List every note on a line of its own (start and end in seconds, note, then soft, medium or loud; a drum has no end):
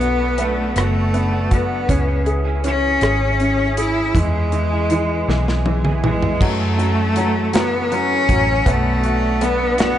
0.00 0.72 B1 medium
0.00 0.21 A3 soft
0.00 0.37 B3 medium
0.00 0.42 B3 medium
0.00 0.19 D4 soft
0.00 0.18 F#4 soft
0.00 0.75 F#4 soft
0.00 closed hi-hat soft
0.19 0.38 A3 soft
0.19 0.39 D4 soft
0.19 0.38 F#4 soft
0.38 0.75 F#3 soft
0.38 0.75 A3 medium
0.38 0.77 A3 medium
0.38 1.12 B3 medium
0.38 0.76 D4 medium
0.38 0.76 F#4 medium
0.38 closed hi-hat medium
0.76 1.85 F#1 medium
0.76 0.95 B2 medium
0.76 0.95 F#3 medium
0.76 0.95 A3 medium
0.76 1.54 A3 medium
0.76 0.95 D4 medium
0.76 1.50 F#4 soft
0.76 0.93 F#4 medium
0.76 cross-stick medium
0.76 closed hi-hat medium
0.94 1.33 A3 soft
0.94 1.33 D4 soft
0.94 1.31 F#4 soft
1.14 1.87 B3 medium
1.14 closed hi-hat soft
1.32 1.51 A3 soft
1.32 1.51 D4 soft
1.32 1.51 F#4 medium
1.51 1.88 F#3 medium
1.51 1.89 A3 medium
1.51 2.27 B3 medium
1.51 1.89 D4 medium
1.51 1.88 F#4 medium
1.51 1.90 F#4 medium
1.51 kick medium
1.51 closed hi-hat medium
1.89 2.98 C#2 medium
1.89 2.08 C#3 medium
1.89 2.08 E3 medium
1.89 2.62 C#4 medium
1.89 2.08 C#4 medium
1.89 2.08 E4 medium
1.89 2.06 G#4 medium
1.89 kick medium
1.89 closed hi-hat medium
2.07 2.46 C#4 soft
2.07 2.44 E4 soft
2.07 2.43 G#4 soft
2.26 3.01 G#4 medium
2.26 closed hi-hat soft
2.44 2.64 C#4 soft
2.44 2.64 E4 soft
2.44 2.63 G#4 soft
2.64 3.01 E3 medium
2.64 3.38 C#4 medium
2.64 3.02 C#4 medium
2.64 3.74 C#4 medium
2.64 3.02 E4 medium
2.64 3.03 G#4 medium
2.64 closed hi-hat medium
3.01 4.10 G#1 medium
3.01 3.20 C#3 medium
3.01 3.21 E3 medium
3.01 3.21 C#4 medium
3.01 3.21 E4 medium
3.01 3.76 G#4 medium
3.01 3.20 G#4 medium
3.01 cross-stick medium
3.01 closed hi-hat medium
3.21 3.59 C#4 soft
3.21 3.58 E4 soft
3.21 3.57 G#4 soft
3.40 4.12 C#4 medium
3.40 closed hi-hat soft
3.58 3.76 C#4 soft
3.58 3.77 E4 soft
3.58 3.77 G#4 medium
3.77 4.13 E3 medium
3.77 4.15 C#4 medium
3.77 4.15 E4 medium
3.77 4.17 E4 medium
3.77 4.14 G#4 medium
3.77 4.15 G#4 medium
3.77 closed hi-hat medium
4.15 5.23 E2 loud
4.15 4.33 E3 medium
4.15 4.51 E3 medium
4.15 5.65 G#3 medium
4.15 4.34 B3 medium
4.15 4.34 E4 medium
4.15 4.33 G#4 medium
4.15 kick loud
4.15 closed hi-hat medium
4.34 4.72 B3 soft
4.34 4.71 E4 soft
4.34 4.70 G#4 soft
4.52 4.89 E3 medium
4.52 closed hi-hat soft
4.71 4.90 B3 soft
4.71 4.90 E4 soft
4.71 4.90 G#4 medium
4.90 5.26 E3 medium
4.90 5.27 E3 medium
4.90 5.27 B3 medium
4.90 5.28 E4 medium
4.90 5.28 G#4 medium
4.90 closed hi-hat medium
5.28 6.36 B1 medium
5.28 5.46 E3 medium
5.28 5.64 E3 medium
5.28 5.47 B3 medium
5.28 5.47 E4 medium
5.28 5.45 G#4 medium
5.28 snare medium
5.47 5.85 B3 soft
5.47 5.84 E4 medium
5.47 5.83 G#4 medium
5.47 snare medium
5.66 6.02 E3 medium
5.66 high tom medium
5.84 6.02 B3 soft
5.84 6.03 E4 medium
5.84 6.03 G#4 medium
5.84 mid tom medium
6.03 6.40 E3 medium
6.03 6.39 E3 medium
6.03 6.45 G#3 medium
6.03 6.41 B3 medium
6.03 6.41 E4 medium
6.03 6.41 G#4 medium
6.03 mid tom medium
6.22 floor tom medium
6.41 8.24 F#2 loud
6.41 6.78 F#2 medium
6.41 6.78 C#3 medium
6.41 6.79 E3 medium
6.41 6.77 F#3 medium
6.41 6.78 A3 medium
6.41 7.54 A3 medium
6.41 6.77 C#4 medium
6.41 6.76 F#4 medium
6.41 kick loud
6.41 crash loud
6.78 7.14 E3 soft
6.78 7.15 F#3 medium
6.78 7.15 A3 soft
6.78 7.16 C#4 soft
6.78 7.15 F#4 soft
6.78 closed hi-hat soft
7.16 7.53 E3 medium
7.16 7.52 F#3 medium
7.16 7.53 A3 medium
7.16 7.53 C#4 medium
7.16 7.52 F#4 medium
7.16 closed hi-hat medium
7.53 7.92 F#2 medium
7.53 7.92 C#3 medium
7.53 7.90 E3 medium
7.53 7.90 F#3 medium
7.53 7.91 A3 medium
7.53 7.95 B3 medium
7.53 7.91 C#4 medium
7.53 7.91 F#4 medium
7.53 snare loud
7.53 closed hi-hat medium
7.91 8.28 E3 medium
7.91 8.28 F#3 medium
7.91 8.29 A3 medium
7.91 8.29 C#4 medium
7.91 8.70 C#4 loud
7.91 8.28 F#4 medium
7.91 closed hi-hat soft
8.29 8.64 A1 medium
8.29 8.66 E3 soft
8.29 8.65 F#3 medium
8.29 8.66 A3 soft
8.29 8.67 C#4 soft
8.29 8.66 F#4 medium
8.29 kick medium
8.29 closed hi-hat medium
8.66 9.98 B1 medium
8.66 9.03 B2 medium
8.66 9.04 F#3 medium
8.66 9.04 A3 medium
8.66 9.45 A3 loud
8.66 9.40 B3 medium
8.66 9.03 D4 medium
8.66 9.02 F#4 medium
8.66 kick loud
8.66 closed hi-hat medium
9.03 9.41 A3 soft
9.03 9.41 D4 soft
9.03 9.41 F#4 medium
9.03 9.77 F#4 medium
9.03 closed hi-hat soft
9.41 9.79 F#3 medium
9.41 9.78 A3 medium
9.41 9.98 B3 medium
9.41 9.80 B3 medium
9.41 9.78 D4 medium
9.41 9.77 F#4 medium
9.41 closed hi-hat medium
9.78 9.98 B2 medium
9.78 9.98 F#3 medium
9.78 9.98 A3 medium
9.78 9.98 B3 loud
9.78 9.98 D4 medium
9.78 9.98 F#4 medium
9.78 snare loud
9.78 closed hi-hat medium